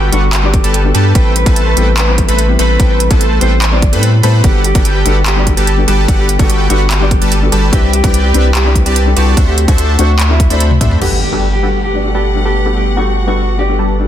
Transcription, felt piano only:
0.11 G3 B3 D4 F#4 A4
0.43 G3 B3 D4 F#4 D5
0.53 G3 B3 D4 F#4 A4
0.84 G3 B3 D4 F#4 A4
1.14 G3 B3 C4 E4 A4
1.45 G3 B3 C4 E4 A4
1.76 G3 B3 C4 E4 A4
2.07 G3 B3 C4 E4 C5
2.17 G3 B3 C4 E4 A4
2.48 G3 B3 C4 E4 G4
2.79 G3 B3 C4 E4 A4
3.10 G3 B3 C4 E4 A4
3.40 G3 B3 C4 E4 A4
3.71 G3 B3 C4 E4 C5
3.92 G3 B3 C4 E4 B4
4.22 G3 B3 C4 E4 C5
4.43 G3 B3 D4 F#4 A4
4.74 G3 B3 D4 F#4 A4
5.05 G3 B3 D4 F#4 A4
5.36 G3 B3 D4 F#4 D5
5.46 G3 B3 D4 F#4 A4
5.77 G3 B3 D4 F#4 A4
6.07 G3 B3 D4 F#4 A4
6.38 G3 B3 D4 F#4 A4
6.69 G3 B3 D4 F#4 A4
7.00 G3 B3 D4 F#4 D5
7.10 G3 B3 D4 F#4 A4
7.41 G3 B3 D4 F#4 A4
7.72 G3 C4 D4 E4 B4
8.03 G3 C4 D4 E4 B4
8.33 G3 C4 D4 E4 B4
8.64 G3 C4 D4 E4 D5
8.74 G3 C4 D4 E4 B4
9.05 G3 C4 D4 E4 A4
9.36 A3 C4 D4 F#4 C5
9.67 A3 C4 D4 F#4 C5
9.98 A3 C4 D4 F#4 C5
10.29 A3 C4 D4 F#4 E5
10.49 A3 C4 D4 F#4 D5
10.80 A3 C4 D4 F#4 E5
11.01 G3 B3 D4 F#4 A4
11.32 G3 B3 D4 F#4 A4
11.62 G3 B3 D4 F#4 A4
11.93 G3 B3 D4 F#4 D5
12.03 G3 B3 D4 F#4 A4
12.34 G3 B3 D4 F#4 A4
12.65 G3 B3 D4 F#4 A4
12.96 G3 B3 D4 F#4 A4
13.26 G3 B3 D4 F#4 A4
13.57 G3 B3 D4 F#4 D5
13.68 G3 B3 D4 F#4 A4
13.99 G3 B3 D4 F#4 A4

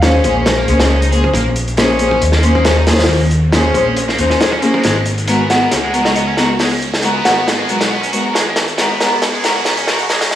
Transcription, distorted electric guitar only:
0.02 C#4
0.58 A#3
0.68 C#4
0.80 A#3
0.90 C#4
1.02 D#4
1.12 G#4
1.34 A#3
1.78 C#4
2.33 A#3
2.44 C#4
2.55 A#3
2.66 C#4
2.78 D#4
2.88 G#4
3.10 A#3
3.53 C#4
4.09 A#3
4.19 D#4
4.30 C#4
4.41 G#3
4.52 C#4
4.63 A#3
4.84 G#3
5.28 B3
5.84 G#3
5.94 B3
6.05 F#3
6.16 B3
6.28 C#4
6.38 F#4
6.60 G#3
7.04 B3
7.59 G#3
7.69 B3
7.81 F#3
7.91 B3
8.02 C#4
8.13 F#4
8.35 G#3
8.78 B3
9.34 G#3
9.44 B3
9.56 F#3
9.66 B3
9.77 C#4
9.88 F#4
10.10 G#3

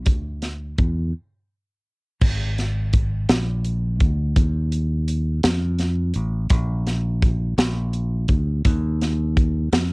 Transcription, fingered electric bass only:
0.07 D2
0.79 E2
2.22 G#1
3.29 A#1
4.01 D2
4.37 D#2
5.44 F2
6.16 A1
6.51 A#1
7.58 A#1
8.29 D2
8.65 D#2
9.72 F2

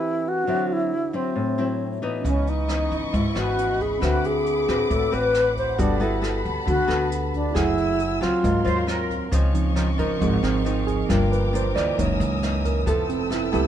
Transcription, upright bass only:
2.25 C#2
2.92 G#1
3.14 G#1
3.36 G#1
4.02 D2
4.69 A1
4.90 A1
5.13 A1
5.79 G1
6.45 D2
6.68 D2
6.89 D2
7.56 F#1
8.22 C#2
8.44 G#1
8.66 D#2
9.32 C#2
9.99 G#1
10.21 G#1
10.43 G#1
11.10 G1
11.76 D2
11.99 F#1
12.20 C#2
12.87 F1
13.54 C2

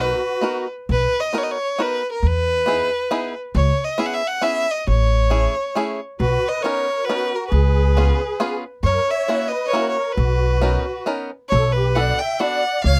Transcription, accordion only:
Already playing: F#4
6.20 F#4
6.48 B4
6.61 A#4
7.04 F#4
7.34 F#4
7.49 G#4
8.84 A#4
9.11 C#5
9.49 B4
9.67 A#4 B4
9.94 A#4
10.15 F#4
11.51 A4
11.76 G4
11.98 D5
12.21 E5
12.43 D5
12.85 C#5

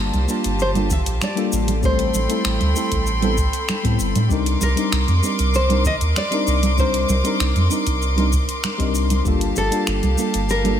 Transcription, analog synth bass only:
0.00 G1
0.14 C2
0.45 G1
1.07 A#1
1.53 A1
2.15 A1
2.45 A1
2.61 D2
2.92 A1
3.85 A2
4.00 G1
4.16 A2
4.31 C2
4.62 C2
4.92 C2
5.08 F2
5.39 C2
6.01 D#2
6.47 C2
7.09 C2
7.40 C2
7.56 F2
7.87 C2
8.80 C2
9.26 G1
9.57 G1
9.88 G1
10.04 C2
10.35 G1

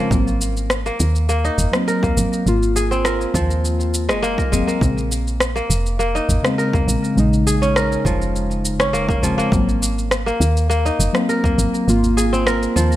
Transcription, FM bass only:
0.11 G#1
1.00 D#2
1.58 F#1
2.17 G#1
2.46 G#1
3.34 D#2
4.09 F#1
4.38 C2
4.52 F#1
4.81 A#1
5.70 F1
6.29 G#1
6.88 A#1
7.17 A#1
8.05 F1
8.79 G#1
8.93 F1
9.52 G#1
10.40 D#2
10.99 F#1
11.58 G#1
11.88 G#1
12.76 D#2

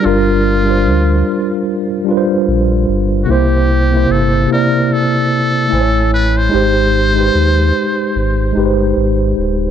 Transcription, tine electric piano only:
Already playing: D4 F4 A#4
0.00 G3 D4
0.05 F4 A#4
0.64 G3 D4
0.68 F4 C5
2.04 G3 D4
2.09 F4 B4
2.17 C5
3.25 C3 A#3
3.29 E4 C5
3.90 C3 A#3
3.95 E4 C5
4.47 C3 A#3
4.52 E4 D5
5.68 A3 E4
5.72 C5 G#5
5.81 C#5
6.49 G#3 D#4
6.54 G4 C5
7.13 G#3 D#4
7.18 G4 B4
7.26 C5
8.53 G#3 D#4
8.57 G4 B4
8.66 C5

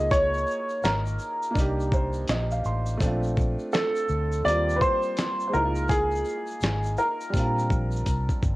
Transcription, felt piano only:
Already playing: A#3 D#4 F4 G#4
1.51 A#3 D4
1.57 D#4 G4
1.93 C5
2.30 D#5
2.52 F5
2.66 C6
2.97 A3 C4
3.03 D4 F4
4.44 G3 A#3 C4
4.49 F4
5.50 G#3 A#3
5.55 D#4 E4
5.65 F4
7.30 G3 C4
7.36 D4 F4

